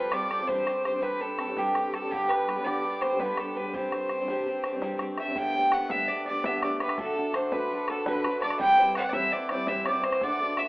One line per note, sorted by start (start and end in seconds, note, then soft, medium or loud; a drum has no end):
0.00 0.12 F3 medium
0.00 0.11 G3 medium
0.00 0.12 C4 medium
0.00 0.13 F4 medium
0.00 1.58 G4 medium
0.00 0.13 A4 medium
0.00 1.21 A4 medium
0.00 0.14 B4 medium
0.00 0.56 B4 medium
0.00 0.11 D5 medium
0.11 0.29 G3 medium
0.11 0.30 C4 medium
0.11 0.31 F4 medium
0.11 0.32 A4 medium
0.11 2.57 D5 medium
0.11 0.49 D5 loud
0.11 bodhran medium
0.31 0.40 G3 medium
0.31 0.40 C4 medium
0.31 0.40 F4 medium
0.31 0.38 A4 medium
0.31 bodhran medium
0.39 0.49 C4 soft
0.39 0.49 F4 soft
0.39 0.49 A4 medium
0.47 0.67 E3 medium
0.47 0.64 G3 medium
0.47 0.65 C4 medium
0.47 0.66 D4 medium
0.47 0.67 G4 medium
0.47 0.84 C5 loud
0.47 0.85 C5 medium
0.47 bodhran medium
0.58 bodhran soft
0.65 0.82 G3 medium
0.65 0.84 C4 medium
0.65 0.85 D4 medium
0.65 0.85 G4 medium
0.65 bodhran medium
0.83 0.93 G3 medium
0.83 0.94 C4 medium
0.83 0.92 D4 medium
0.83 0.91 G4 medium
0.83 1.04 C5 medium
0.83 1.09 C5 medium
0.83 bodhran medium
0.92 1.00 C4 soft
0.92 1.00 D4 soft
0.92 1.00 G4 soft
1.00 1.20 E3 medium
1.00 1.18 G3 medium
1.00 1.20 C4 medium
1.00 1.20 D4 medium
1.00 1.20 G4 medium
1.00 1.22 B4 medium
1.00 2.31 B4 medium
1.00 bodhran medium
1.12 bodhran soft
1.19 1.36 G3 medium
1.19 1.37 C4 medium
1.19 1.38 D4 medium
1.19 1.39 G4 medium
1.19 1.59 A4 medium
1.19 1.40 A4 medium
1.19 bodhran soft
1.38 1.47 G3 medium
1.38 1.48 C4 medium
1.38 1.47 D4 medium
1.38 1.46 G4 medium
1.38 1.95 A4 medium
1.38 bodhran medium
1.47 1.57 C4 soft
1.47 1.57 D4 soft
1.47 1.57 G4 soft
1.57 1.75 E3 medium
1.57 1.74 G3 medium
1.57 1.76 C4 medium
1.57 1.76 D4 medium
1.57 1.96 G4 medium
1.57 2.14 G4 medium
1.57 1.76 G4 medium
1.57 bodhran medium
1.75 1.91 G3 medium
1.75 1.93 C4 medium
1.75 1.93 D4 medium
1.75 1.95 G4 medium
1.75 bodhran medium
1.92 2.02 G3 medium
1.92 2.03 C4 medium
1.92 2.03 D4 medium
1.92 2.01 G4 medium
1.92 2.13 A4 medium
1.92 4.88 A4 medium
1.92 bodhran medium
2.02 2.12 C4 soft
2.02 2.11 D4 soft
2.02 2.11 G4 soft
2.11 2.29 G2 medium
2.11 2.29 D3 medium
2.11 2.27 G3 medium
2.11 2.29 B3 medium
2.11 2.29 D4 medium
2.11 2.30 G4 medium
2.11 2.30 G4 loud
2.11 5.28 G4 medium
2.11 bodhran medium
2.21 bodhran soft
2.29 2.46 G3 medium
2.29 2.47 B3 medium
2.29 2.47 D4 medium
2.29 2.48 G4 medium
2.29 2.66 B4 medium
2.29 3.07 B4 medium
2.29 bodhran medium
2.47 2.56 G3 medium
2.47 2.57 B3 medium
2.47 2.56 D4 medium
2.47 2.55 G4 medium
2.47 bodhran medium
2.56 2.65 G3 soft
2.56 2.65 B3 soft
2.56 2.66 D4 soft
2.56 2.65 G4 soft
2.65 2.83 G2 medium
2.65 2.83 D3 medium
2.65 2.81 G3 medium
2.65 2.83 B3 medium
2.65 2.83 D4 medium
2.65 2.84 G4 medium
2.65 3.02 D5 medium
2.65 5.12 D5 medium
2.65 bodhran medium
2.75 bodhran soft
2.82 3.00 G3 medium
2.82 3.01 B3 medium
2.82 3.02 D4 medium
2.82 3.02 G4 medium
2.82 bodhran soft
3.01 3.10 G3 medium
3.01 3.11 B3 medium
3.01 3.11 D4 medium
3.01 3.10 G4 medium
3.01 3.25 C5 medium
3.01 3.21 C5 medium
3.01 bodhran medium
3.11 3.19 G3 soft
3.11 3.20 B3 soft
3.11 3.19 D4 soft
3.11 3.20 G4 soft
3.19 3.38 G2 medium
3.19 3.38 D3 medium
3.19 3.35 G3 medium
3.19 3.36 B3 medium
3.19 3.38 D4 medium
3.19 3.38 G4 medium
3.19 3.55 B4 medium
3.19 3.41 B4 medium
3.19 bodhran medium
3.36 3.54 G3 medium
3.36 3.55 B3 medium
3.36 3.56 D4 medium
3.36 3.57 G4 medium
3.36 3.58 A4 medium
3.36 bodhran medium
3.55 3.64 G3 medium
3.55 3.65 B3 medium
3.55 3.65 D4 medium
3.55 3.63 G4 medium
3.55 3.79 B4 medium
3.55 3.74 B4 medium
3.65 3.73 G3 soft
3.65 3.74 B3 soft
3.65 3.73 D4 medium
3.65 3.74 G4 medium
3.73 3.92 C3 medium
3.73 3.92 E3 medium
3.73 3.90 G3 medium
3.73 3.91 C4 medium
3.73 3.92 D4 medium
3.73 3.92 G4 medium
3.73 6.37 C5 medium
3.73 4.96 C5 medium
3.73 bodhran medium
3.83 bodhran soft
3.91 4.08 G3 soft
3.91 4.09 C4 medium
3.91 4.10 D4 medium
3.91 4.11 G4 medium
3.91 bodhran medium
4.09 4.19 G3 medium
4.09 4.19 C4 medium
4.09 4.18 D4 medium
4.09 4.17 G4 medium
4.09 bodhran medium
4.19 4.28 G3 soft
4.19 4.28 C4 soft
4.19 4.28 D4 medium
4.19 4.28 G4 soft
4.28 4.46 C3 medium
4.28 4.46 E3 medium
4.28 4.45 G3 medium
4.28 4.46 C4 medium
4.28 4.47 D4 medium
4.28 4.47 G4 medium
4.28 bodhran medium
4.37 bodhran soft
4.46 4.63 G3 medium
4.46 4.64 C4 medium
4.46 4.64 D4 medium
4.46 4.65 G4 medium
4.46 bodhran soft
4.64 4.73 G3 medium
4.64 4.73 C4 medium
4.64 4.72 D4 medium
4.64 4.71 G4 medium
4.64 bodhran medium
4.72 4.81 G3 soft
4.72 4.82 C4 soft
4.72 4.82 D4 soft
4.72 4.82 G4 soft
4.82 5.00 C3 medium
4.82 5.00 E3 medium
4.82 4.97 G3 medium
4.82 4.99 C4 medium
4.82 4.99 D4 loud
4.82 5.01 G4 medium
4.82 bodhran medium
4.99 5.17 G3 medium
4.99 5.17 C4 medium
4.99 5.18 D4 medium
4.99 5.19 G4 medium
4.99 bodhran medium
5.17 5.27 G3 medium
5.17 5.27 C4 medium
5.17 5.27 D4 medium
5.17 5.27 G4 medium
5.17 5.88 E5 medium
5.17 5.39 E5 medium
5.17 bodhran medium
5.28 5.37 G3 soft
5.28 5.37 C4 medium
5.28 5.37 D4 medium
5.28 5.36 G4 medium
5.36 5.54 G2 medium
5.36 5.54 D3 loud
5.36 5.55 A3 medium
5.36 5.55 B3 medium
5.36 5.55 D4 medium
5.36 5.53 G4 medium
5.36 5.55 G5 medium
5.36 5.75 G5 loud
5.36 bodhran medium
5.55 5.70 A3 soft
5.55 5.72 B3 soft
5.55 5.73 D4 medium
5.55 5.72 G4 medium
5.55 5.77 G5 medium
5.71 5.90 A3 medium
5.71 5.90 B3 medium
5.71 5.90 D4 medium
5.71 5.90 G4 medium
5.71 7.85 F#5 medium
5.71 5.92 F#5 loud
5.71 bodhran medium
5.81 bodhran soft
5.89 6.09 D3 medium
5.89 6.09 A3 medium
5.89 6.09 B3 medium
5.89 6.09 D4 medium
5.89 6.08 G4 medium
5.89 6.43 E5 medium
5.89 6.10 E5 loud
5.89 bodhran medium
5.93 6.09 G2 medium
6.08 6.27 A3 medium
6.08 6.27 B3 medium
6.08 6.26 D5 medium
6.12 6.28 D4 medium
6.12 6.27 G4 medium
6.24 6.45 G4 medium
6.24 6.61 D5 medium
6.24 6.47 D5 loud
6.30 6.45 A3 medium
6.30 6.45 B3 medium
6.30 6.46 D4 medium
6.43 6.63 G2 medium
6.43 6.63 D3 medium
6.43 6.63 A3 medium
6.43 6.63 B3 medium
6.43 6.62 D4 medium
6.43 8.73 E5 medium
6.43 6.62 E5 medium
6.43 bodhran loud
6.47 6.61 G4 medium
6.53 bodhran soft
6.61 6.79 A3 medium
6.61 6.80 B3 medium
6.61 6.81 D4 medium
6.61 6.80 G4 medium
6.61 7.31 D5 medium
6.61 6.79 D5 medium
6.61 bodhran medium
6.80 6.98 A3 medium
6.80 6.98 B3 medium
6.80 6.98 D4 medium
6.80 6.99 G4 medium
6.80 6.98 B4 medium
6.80 bodhran medium
6.89 bodhran medium
6.98 7.16 D3 medium
6.98 7.16 A3 medium
6.98 7.17 D4 loud
6.98 7.15 F#4 medium
6.98 7.36 A4 loud
6.98 7.90 A4 medium
6.98 7.14 A4 loud
6.98 bodhran medium
7.15 7.33 D4 medium
7.15 7.33 F#4 medium
7.15 7.34 A4 medium
7.31 7.51 A3 medium
7.31 7.52 D4 medium
7.31 7.52 F#4 medium
7.31 7.54 C5 medium
7.31 8.42 D5 medium
7.31 bodhran medium
7.35 7.51 A4 medium
7.35 7.61 C5 medium
7.43 bodhran soft
7.52 7.71 D3 medium
7.52 7.69 A3 medium
7.52 7.70 D4 medium
7.52 7.71 F#4 medium
7.52 7.70 A4 medium
7.52 7.91 B4 medium
7.52 8.06 B4 medium
7.52 bodhran medium
7.70 7.88 A3 medium
7.70 7.89 D4 medium
7.70 7.88 F#4 medium
7.70 7.87 A4 medium
7.88 8.06 D4 soft
7.88 8.07 F#4 medium
7.88 8.06 A4 medium
7.88 10.68 A4 medium
7.88 bodhran medium
8.06 8.24 D3 medium
8.06 8.25 A3 medium
8.06 8.25 D4 medium
8.06 8.25 F#4 medium
8.06 8.23 A4 medium
8.06 10.08 B4 medium
8.06 8.40 B4 medium
8.06 bodhran medium
8.16 bodhran soft
8.24 8.42 D4 medium
8.24 8.43 F#4 soft
8.24 8.42 A4 medium
8.24 bodhran medium
8.41 8.60 A3 medium
8.41 8.60 D4 medium
8.41 8.60 F#4 medium
8.41 8.61 A4 medium
8.41 8.58 D5 medium
8.41 9.31 D5 medium
8.41 bodhran medium
8.50 bodhran medium
8.59 8.78 C3 medium
8.59 8.78 E3 medium
8.59 8.78 G3 medium
8.59 8.78 C4 medium
8.59 8.78 E4 medium
8.59 8.77 C5 loud
8.59 8.93 G5 loud
8.59 9.02 G5 medium
8.59 bodhran medium
8.79 8.94 G3 medium
8.79 8.96 C4 medium
8.79 8.96 E4 medium
8.79 8.96 C5 medium
8.95 9.14 G3 medium
8.95 9.14 C4 medium
8.95 9.14 E4 medium
8.95 9.13 C5 medium
8.95 10.68 F#5 medium
8.95 9.11 F#5 medium
8.95 bodhran medium
9.04 bodhran soft
9.09 9.14 D5 medium
9.09 9.33 E5 loud
9.09 bodhran medium
9.14 9.33 C3 medium
9.14 9.33 E3 medium
9.14 9.31 G3 medium
9.14 9.32 C4 medium
9.14 9.32 E4 medium
9.14 9.32 C5 medium
9.14 9.65 E5 medium
9.31 9.50 G3 medium
9.31 9.50 C4 medium
9.31 9.50 E4 medium
9.31 9.50 C5 medium
9.31 9.49 D5 medium
9.31 9.50 D5 medium
9.49 9.69 E4 medium
9.49 9.68 C5 medium
9.49 9.84 D5 medium
9.49 9.70 D5 loud
9.49 bodhran medium
9.53 9.68 G3 medium
9.53 9.68 C4 medium
9.66 9.86 C3 medium
9.66 9.86 E3 medium
9.66 9.86 G3 medium
9.66 9.87 C4 medium
9.66 10.56 E5 medium
9.66 9.86 E5 medium
9.66 bodhran medium
9.70 9.87 E4 medium
9.70 9.86 C5 medium
9.76 bodhran soft
9.84 10.05 E4 medium
9.84 10.05 C5 medium
9.84 10.22 D5 medium
9.84 10.05 D5 medium
9.84 bodhran medium
9.89 10.04 G3 medium
9.89 10.05 C4 medium
10.02 10.22 G3 medium
10.02 10.68 C5 medium
10.02 10.25 C5 loud
10.02 bodhran medium
10.06 10.23 C4 medium
10.06 10.23 E4 medium
10.06 10.24 C5 medium
10.12 bodhran medium
10.21 10.40 D3 medium
10.21 10.40 A3 medium
10.21 10.41 D4 loud
10.21 10.40 F#4 loud
10.21 10.39 A4 loud
10.21 10.68 D5 medium
10.21 10.60 D5 loud
10.21 bodhran medium
10.40 10.58 D4 soft
10.40 10.59 F#4 soft
10.40 10.58 A4 medium
10.57 10.68 A3 medium
10.57 10.68 D4 medium
10.57 10.68 F#4 medium
10.57 10.68 A4 medium
10.57 10.68 E5 medium
10.57 10.68 E5 loud
10.57 bodhran medium